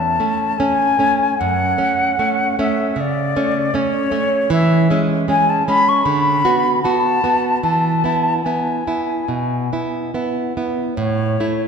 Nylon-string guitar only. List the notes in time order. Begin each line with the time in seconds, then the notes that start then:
Already playing: E2
0.20 A3 C#4
0.60 A3 C#4
0.99 A3 C#4
1.41 F#2
1.78 A3 C#4
2.19 A3 C#4
2.59 A3 C#4
2.96 C#3
3.36 A3 C#4
3.74 A3 C#4
4.11 A3 C#4
4.50 E3
4.90 G#3 C#4
5.28 G#3 C#4
5.68 G#3 C#4
6.06 D3
6.45 B3 F#4
6.84 B3 F#4
7.24 B3 F#4
7.63 E3
8.04 B3 E4
8.46 B3 E4
8.87 B3 E4
9.28 B2
9.73 B3 E4
10.14 B3 E4
10.57 B3 E4
10.97 A2
11.40 A3 E4